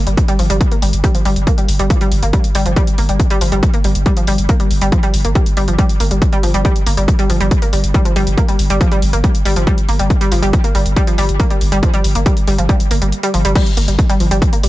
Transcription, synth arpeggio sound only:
0.07 0.16 G3 medium
0.28 0.34 G3 loud
0.39 0.45 F3 medium
0.50 0.56 G3 loud
0.72 0.77 A#3 medium
0.82 0.91 G3 medium
1.04 1.10 G3 loud
1.15 1.21 F3 medium
1.25 1.31 G3 loud
1.47 1.53 A#3 medium
1.58 1.67 G3 medium
1.79 1.85 G3 loud
1.90 1.96 F3 medium
2.01 2.07 G3 loud
2.23 2.28 A#3 medium
2.33 2.42 G3 medium
2.55 2.61 G3 loud
2.66 2.72 F3 medium
2.77 2.82 G3 loud
2.98 3.04 A#3 medium
3.09 3.18 G3 medium
3.31 3.36 G3 loud
3.41 3.47 F3 medium
3.52 3.58 G3 loud
3.74 3.80 A#3 medium
3.84 3.93 G3 medium
4.06 4.12 G3 loud
4.17 4.23 F3 medium
4.28 4.34 G3 loud
4.49 4.55 A#3 medium
4.60 4.69 G3 medium
4.82 4.87 G3 loud
4.92 4.98 F3 medium
5.03 5.09 G3 loud
5.25 5.31 A#3 medium
5.35 5.44 G3 medium
5.57 5.63 G3 loud
5.68 5.74 F3 medium
5.79 5.85 G3 loud
6.00 6.06 A#3 medium
6.11 6.20 G3 medium
6.33 6.38 G3 loud
6.43 6.49 F3 medium
6.54 6.60 G3 loud
6.65 6.71 G3 loud
6.87 6.92 A#3 medium
6.97 7.06 G3 medium
7.19 7.25 G3 loud
7.30 7.36 F3 medium
7.41 7.46 G3 loud
7.62 7.68 A#3 medium
7.73 7.82 G3 medium
7.94 8.00 G3 loud
8.05 8.11 F3 medium
8.16 8.22 G3 loud
8.38 8.44 A#3 medium
8.48 8.57 G3 medium
8.70 8.76 G3 loud
8.81 8.87 F3 medium
8.92 8.97 G3 loud
9.13 9.19 A#3 medium
9.24 9.33 G3 medium
9.45 9.51 G3 loud
9.56 9.62 F3 medium
9.67 9.73 G3 loud
9.89 9.95 A#3 medium
9.99 10.08 G3 medium
10.21 10.27 G3 loud
10.32 10.38 F3 medium
10.42 10.48 G3 loud
10.64 10.70 A#3 medium
10.75 10.84 G3 medium
10.96 11.02 G3 loud
11.07 11.13 F3 medium
11.18 11.24 G3 loud
11.40 11.46 A#3 medium
11.51 11.59 G3 medium
11.72 11.78 G3 loud
11.83 11.89 F3 medium
11.94 12.00 G3 loud
12.15 12.21 A#3 medium
12.26 12.35 G3 medium
12.48 12.54 G3 loud
12.58 12.64 F3 medium
12.69 12.75 G3 loud
12.91 12.97 A#3 medium
13.02 13.10 G3 medium
13.23 13.29 G3 loud
13.34 13.40 F3 medium
13.45 13.51 G3 loud
13.56 13.62 G3 loud
13.77 13.83 A#3 medium
13.88 13.97 G3 medium
14.10 14.15 G3 loud
14.20 14.26 F3 medium
14.31 14.37 G3 loud
14.53 14.59 A#3 medium
14.64 14.69 G3 medium

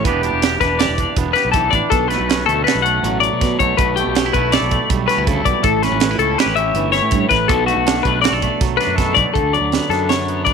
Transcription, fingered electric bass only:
0.05 0.29 E1 loud
0.33 0.57 E1 medium
0.61 0.85 E1 medium
0.88 1.05 E1 medium
1.16 1.33 E1 medium
1.45 1.69 B1 medium
1.73 1.81 A1 medium
1.91 2.16 B1 medium
2.19 2.44 B1 medium
2.48 2.64 D2 medium
2.75 2.99 B1 medium
3.03 3.27 A1 medium
3.33 3.56 B2 medium
3.59 3.76 B1 medium
3.78 4.02 B1 loud
4.07 4.31 B1 medium
4.34 4.58 B1 medium
4.61 4.77 B1 medium
4.90 5.06 B1 medium
5.17 5.41 D2 medium
5.45 5.53 B1 medium
5.64 5.88 A1 loud
5.91 6.16 A1 medium
6.18 6.35 C#2 medium
6.46 6.71 A1 medium
6.74 6.99 G1 loud
7.02 7.27 A2 medium
7.30 7.49 A1 medium
7.49 7.73 B1 loud
7.76 8.01 B1 medium
8.05 8.29 B1 loud
8.31 8.48 B1 medium
8.61 8.77 B1 medium
8.87 9.12 F#2 medium
9.16 9.24 B1 medium
9.35 9.42 D2 medium
9.42 9.59 D2 medium
9.60 9.78 D2 medium
9.89 10.54 F#2 medium

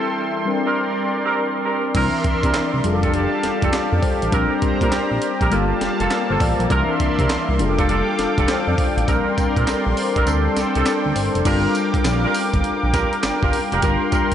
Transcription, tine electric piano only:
0.00 0.44 G3 medium
0.00 0.45 C4 medium
0.00 0.46 E4 medium
0.00 0.50 A4 medium
0.45 1.91 G3 medium
0.45 1.92 C4 medium
0.45 1.92 D4 medium
0.45 1.92 A#4 medium
1.94 2.84 E3 medium
1.94 2.84 C4 medium
1.94 2.83 D4 medium
1.94 2.84 A#4 medium
2.83 4.29 G3 medium
2.83 4.29 D4 medium
2.83 4.30 F4 medium
2.83 2.93 G#4 medium
2.92 3.46 A4 medium
3.73 3.91 G4 medium
3.92 4.02 A4 medium
4.02 4.21 C5 medium
4.22 4.50 D5 medium
4.31 5.48 G3 medium
4.31 5.49 C4 medium
4.31 5.49 D4 medium
4.31 5.49 A#4 medium
5.51 6.67 G3 medium
5.51 6.68 A#3 medium
5.51 6.68 F4 medium
5.51 6.10 A4 medium
6.11 6.29 A#4 medium
6.11 6.29 F5 medium
6.30 6.40 C5 medium
6.30 6.67 A5 medium
6.41 6.59 D5 medium
6.60 6.70 A#4 medium
6.70 7.59 E3 medium
6.70 7.59 C4 medium
6.70 7.58 D4 medium
6.70 7.60 A#4 medium
7.58 9.04 G3 medium
7.58 9.05 D4 medium
7.58 9.05 F4 medium
7.58 7.68 G#4 medium
7.67 9.09 A4 medium
8.49 8.67 C5 medium
8.68 8.96 D5 medium
8.97 9.25 F5 medium
9.07 10.24 G3 medium
9.07 10.24 C4 medium
9.07 10.24 D4 medium
9.07 9.37 A#4 medium
9.38 9.56 A#4 medium
9.57 9.67 G4 medium
9.68 9.86 A4 medium
9.87 9.97 A#4 medium
9.97 10.15 C5 medium
10.17 10.44 D5 medium
10.26 11.42 G3 medium
10.26 11.43 C4 medium
10.26 11.43 D4 medium
10.26 10.56 A4 medium
11.05 11.15 D5 medium
11.16 11.34 C5 medium
11.35 11.63 A4 medium
11.44 13.78 G3 medium
11.44 13.79 D4 medium
11.44 13.79 F4 medium
11.44 13.80 A#4 medium
13.82 14.34 G3 medium
13.82 14.34 D4 medium
13.82 14.34 F4 medium
13.82 14.34 A#4 medium

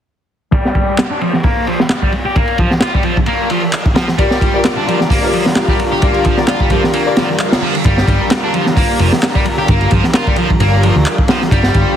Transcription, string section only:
4.19 4.32 F4 medium
4.19 4.32 G4 medium
4.19 4.32 A#4 medium
4.19 4.32 D5 medium
4.54 4.61 F4 medium
4.54 4.61 G4 medium
4.54 4.61 A#4 medium
4.54 4.61 D5 loud
4.88 5.00 F4 medium
4.88 5.00 G4 medium
4.88 5.01 A#4 medium
4.88 5.00 D5 medium
5.23 5.30 F4 medium
5.23 5.30 G4 medium
5.23 5.30 A#4 medium
5.23 5.30 D5 loud
5.56 5.64 F4 medium
5.56 5.64 G4 medium
5.56 5.64 A#4 medium
5.56 5.64 F5 medium
6.02 6.15 F4 medium
6.02 6.15 G4 medium
6.02 6.15 A#4 medium
6.02 6.15 D5 medium
6.38 6.44 F4 medium
6.38 6.44 G4 medium
6.38 6.44 A#4 medium
6.38 6.44 D5 loud
6.71 6.84 F4 medium
6.71 6.84 G4 medium
6.71 6.84 A#4 medium
6.71 6.84 D5 medium
7.06 7.13 F4 medium
7.06 7.13 G4 medium
7.06 7.13 A#4 medium
7.06 7.13 D5 loud
7.40 7.48 F4 medium
7.40 7.48 G4 medium
7.40 7.48 A#4 medium
7.40 7.48 F5 medium

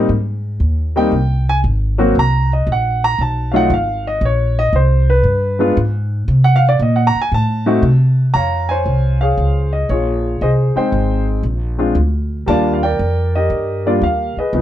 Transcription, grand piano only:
0.96 1.11 G3 medium
0.96 1.11 A#3 medium
0.96 1.11 C4 medium
0.96 1.11 D#4 medium
0.96 1.45 G5 medium
1.49 1.59 G#5 loud
1.98 2.14 F#3 medium
1.98 2.14 A#3 medium
1.98 2.14 C4 medium
1.98 2.14 F#4 medium
2.19 2.51 A#5 medium
2.53 2.68 D#5 medium
2.72 3.04 F#5 medium
3.04 3.20 A#5 loud
3.21 3.54 A5 medium
3.52 3.69 F#3 medium
3.52 3.69 A3 medium
3.52 3.69 D#4 medium
3.52 3.69 F4 medium
3.52 3.54 F5 medium
3.56 3.71 F#5 loud
3.74 4.06 F5 medium
4.07 4.23 D#5 medium
4.25 4.58 C#5 medium
4.59 4.74 D#5 loud
4.76 5.09 C5 medium
5.10 5.73 B4 medium
5.59 5.75 G#3 medium
5.59 5.75 B3 medium
5.59 5.75 D4 medium
5.59 5.75 F4 medium
6.44 6.62 F#5 loud
6.56 6.68 F5 loud
6.69 6.78 D5 medium
6.82 6.98 D#5 medium
6.96 7.14 F#5 medium
7.07 7.19 A#5 loud
7.21 7.31 G#5 loud
7.34 8.24 A5 medium
7.66 7.81 A3 medium
7.66 7.82 C4 medium
7.66 7.82 D#4 medium
7.66 7.82 F#4 medium
8.34 8.70 C#5 medium
8.34 9.19 F5 medium
8.34 8.70 A#5 medium
8.69 9.70 C5 medium
8.69 9.21 C#5 medium
8.69 9.17 G#5 medium
9.21 9.90 G#4 medium
9.21 9.88 C#5 medium
9.21 9.74 F5 medium
9.73 9.88 D#5 medium
9.90 10.39 F4 medium
9.90 10.39 G#4 medium
9.90 10.43 C#5 medium
10.42 10.77 G#4 medium
10.42 10.76 C5 medium
10.42 10.50 D#5 medium
10.76 11.41 G#3 medium
10.76 11.41 C4 medium
10.76 11.41 D#4 medium
10.76 11.41 G#4 soft
10.76 11.25 C5 medium
10.76 11.41 G5 medium
11.78 11.94 G#3 medium
11.78 11.94 C4 medium
11.78 11.94 D4 medium
11.78 11.94 F4 medium
12.46 12.78 G3 medium
12.46 12.79 A#3 medium
12.46 12.79 D4 medium
12.46 12.79 F4 medium
12.46 12.83 D5 medium
12.46 12.72 F5 medium
12.46 12.71 A5 loud
12.74 12.83 F5 medium
12.83 13.35 A#4 medium
12.83 13.83 D5 medium
12.83 13.36 G5 medium
13.35 14.34 G4 medium
13.35 14.34 A#4 medium
13.35 13.83 D#5 medium
13.86 14.01 G3 medium
13.86 14.01 A#3 medium
13.86 14.01 D4 medium
13.86 14.01 F4 medium
13.86 14.02 D5 medium
14.03 14.35 F5 medium
14.38 14.62 G#4 medium
14.38 14.62 B4 medium
14.38 14.62 D#5 medium
14.54 14.62 F3 medium
14.54 14.62 G#3 medium
14.54 14.62 B3 medium
14.54 14.62 D#4 medium

